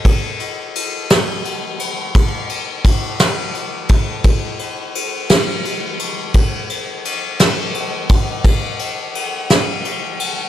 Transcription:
\new DrumStaff \with { instrumentName = "Drums" } \drummode { \time 6/8 \tempo 4. = 57 <bd cymr>8 cymr8 cymr8 <cymr sn>8 cymr8 cymr8 | <bd cymr>8 cymr8 <bd cymr>8 <cymr sn>8 cymr8 <bd cymr>8 | <bd cymr>8 cymr8 cymr8 <cymr sn>8 cymr8 cymr8 | <bd cymr>8 cymr8 cymr8 <cymr sn>8 cymr8 <bd cymr>8 |
<bd cymr>8 cymr8 cymr8 <cymr sn>8 cymr8 cymr8 | }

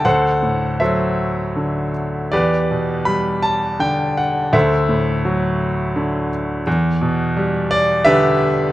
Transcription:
<<
  \new Staff \with { instrumentName = "Grand piano" } { \time 3/4 \key e \minor \tempo 4 = 83 << { fis''4 e''4. r8 | d''4 b''8 a''8 g''8 fis''8 | e''2~ e''8 r8 | r4. d''8 e''4 | } \\ { <a' c''>4 <a' c''>4. r8 | <g' b'>4. r4. | <a' c''>2~ <a' c''>8 r8 | r2 <g' b'>4 | } >> }
  \new Staff \with { instrumentName = "Grand piano" } { \clef bass \time 3/4 \key e \minor d,8 a,8 fis4 d4 | e,8 b,8 g4 d4 | d,8 a,8 fis4 d4 | e,8 b,8 g4 d4 | }
>>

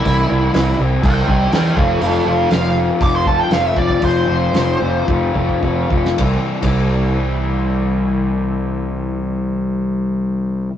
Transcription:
<<
  \new Staff \with { instrumentName = "Lead electric guitar" } { \time 4/4 \key c \major \tempo 4 = 111 e'4. r8 <bes' g''>8 <bes' g''>8 <bes' g''>8 <a' f''>8 | <a' f''>8 <a' f''>8 f''8 r8 d'''16 c'''16 a''16 g''16 f''16 e''16 d''8 | c''2 r2 | r1 |
r1 | }
  \new Staff \with { instrumentName = "Overdriven electric guitar" } { \clef bass \time 4/4 \key c \major <c e g c' e'>8 <c e g c' e'>8 <c e g c' e'>8 <c e g c' e'>8 <c e g c' e'>8 <c e g c' e'>8 <c e g c' e'>8 <f, c f a c' f'>8 | <f, c f a c' f'>8 <f, c f a c' f'>8 <f, c f a c' f'>8 <f, c f a c' f'>8 <f, c f a c' f'>8 <f, c f a c' f'>8 <f, c f a c' f'>8 <f, c f a c' f'>8 | <f, c f a c' f'>8 <f, c f a c' f'>8 <f, c f a c' f'>8 <f, c f a c' f'>8 <f, c f a c' f'>8 <f, c f a c' f'>8 <f, c f a c' f'>8 <f, c f a c' f'>8 | <c e g c' e'>16 r8 <c e g c' e'>2.~ <c e g c' e'>16~ |
<c e g c' e'>1 | }
  \new Staff \with { instrumentName = "Picked electric bass" } { \clef bass \time 4/4 \key c \major c,8 c,8 c,8 c,8 c,8 c,8 e,8 f,,8 | f,,8 f,,8 f,,4 f,,4 f,,8 f,,8 | f,,8 f,,8 f,,8 f,,8 f,,8 f,,8 f,,8 f,,8 | c,16 r8 c,2.~ c,16~ |
c,1 | }
  \new DrumStaff \with { instrumentName = "Drums" } \drummode { \time 4/4 <hho bd>4 <hho sn>4 <hho bd>8 bd8 <hho sn>8 bd8 | hho4 <hho sn>4 <hho bd>8 bd8 <hho sn>8 bd16 bd16 | <hho bd>4 <hho sn>4 bd8 bd16 bd16 bd8 bd16 sn16 | <bd cymr>8. <bd cymr>16 r4 r4 r4 |
r4 r4 r4 r4 | }
>>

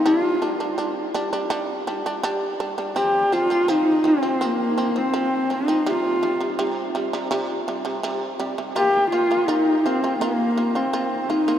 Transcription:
<<
  \new Staff \with { instrumentName = "Horsehead fiddle" } { \time 4/4 \tempo 4 = 83 f'4 r2. | g'8 f'8 ees'8 c'8 bes8. c'8. ees'8 | f'4 r2. | g'8 f'8 ees'8 c'8 bes8. c'8. ees'8 | }
  \new Staff \with { instrumentName = "Shamisen" } { \clef bass \time 4/4 <g d'>8 <g d'>16 <g d'>16 <g d'>8 <g d'>16 <g d'>16 <g d'>8 <g d'>16 <g d'>16 <g d'>8 <g d'>16 <g d'>16 | <f c'>8 <f c'>16 <f c'>16 <f c'>8 <f c'>16 <f c'>16 <f c'>8 <f c'>16 <f c'>16 <f c'>8 <f c'>16 <f c'>16 | <c g>8 <c g>16 <c g>16 <c g>8 <c g>16 <c g>16 <c g>8 <c g>16 <c g>16 <c g>8 <c g>16 <c g>16 | <bes f'>8 <bes f'>16 <bes f'>16 <bes f'>8 <bes f'>16 <bes f'>16 <bes f'>8 <bes f'>16 <bes f'>16 <bes f'>8 <bes f'>16 <bes f'>16 | }
>>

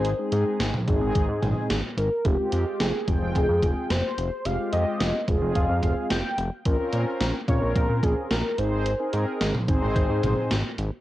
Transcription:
<<
  \new Staff \with { instrumentName = "Soft synth lead" } { \time 4/4 \key f \minor \tempo 4 = 109 c''8 r2. bes'8 | g'4 aes'4 aes'4 c''4 | f''8 ees''4 r8 f''4 g''8. r16 | r4. des''8 bes'8 aes'8 bes'8 c''8~ |
c''8 r2. r8 | }
  \new Staff \with { instrumentName = "Analog polysynth" } { \time 4/4 \key f \minor r16 <aes c' ees' aes'>4 r16 <aes c' ees' aes'>4. r4 | <aes c' f' g'>16 <aes c' f' g'>4 r16 <aes c' f' g''>4. r4 | <aes c' f' g'>16 <aes c' f' g'>4 r16 <aes c' f' aes'>4. r4 | <c' des' f' bes'>16 <c' des' f' bes'>4 r16 <c' des' f' bes'>4. r8 <c' ees' aes' c''>8 |
r16 <c' ees' aes' bes'>4 r16 <c' ees' aes' c''>4. r4 | }
  \new Staff \with { instrumentName = "Analog synth bass" } { \clef bass \time 4/4 \key f \minor aes,,16 r16 aes,16 r16 aes,,16 r16 aes,,16 aes,,16 aes,,16 aes,16 aes,,16 r16 aes,,16 r16 aes,,16 r16 | f,,16 r16 f,16 r16 f,,16 r16 f,,16 f,,16 f,,16 f,16 f,,16 r16 f,,16 r16 f,,16 r16 | f,,16 r16 f,16 r16 f,,16 r16 f,,16 f,,16 f,,16 f,16 f,,16 r16 f,,16 r16 f,,16 r16 | bes,,16 r16 bes,16 r16 bes,,16 r16 bes,,16 bes,,16 bes,,16 bes,16 bes,,16 r16 bes,,16 r16 aes,,8~ |
aes,,16 r16 aes,16 r16 aes,,16 r16 aes,,16 aes,,16 aes,,16 aes,16 aes,,16 r16 aes,,16 r16 aes,,16 r16 | }
  \new DrumStaff \with { instrumentName = "Drums" } \drummode { \time 4/4 hh8 hh8 <hh sn>16 toml16 <hh bd>8 <hh bd>8 <hh toml>8 <hh sn>8 hh8 | <hh bd>8 hh8 <hh sn>8 <hh bd>8 <hh bd>8 <hh bd>8 <hh sn>8 hh8 | hh8 hh8 <hh sn>8 <hh bd>8 <hh bd>8 <hh bd>8 <hh sn>8 hh8 | <hh bd>8 hh8 <hh sn>8 <hh bd>8 <hh bd>8 <hh bd>8 <hh sn>8 hh8 |
hh8 hh8 <hh sn>16 toml16 <hh bd>8 <hh bd>8 <hh toml>8 <hh sn>8 hh8 | }
>>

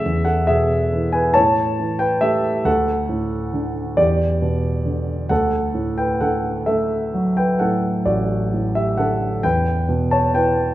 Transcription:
<<
  \new Staff \with { instrumentName = "Grand piano" } { \time 6/8 \key d \major \tempo 4. = 45 <gis' e''>16 <a' fis''>16 <gis' e''>8. <b' gis''>16 <cis'' a''>8. <b' g''>16 <g' e''>8 | <a' fis''>4. <g' d''>4. | <a' fis''>8. <b' g''>16 <a' fis''>8 <a' e''>8. <b' g''>16 <a' fis''>8 | <fis' d''>8. <g' e''>16 <a' fis''>8 <b' g''>8. <cis'' a''>16 <b' g''>8 | }
  \new Staff \with { instrumentName = "Grand piano" } { \clef bass \time 6/8 \key d \major e,8 b,8 e8 a,8 e8 a8 | d,8 a,8 d8 e,8 b,8 d8 | d,8 a,8 d8 a8 fis8 a,8 | a,,8 a,8 d8 e,8 b,8 e8 | }
>>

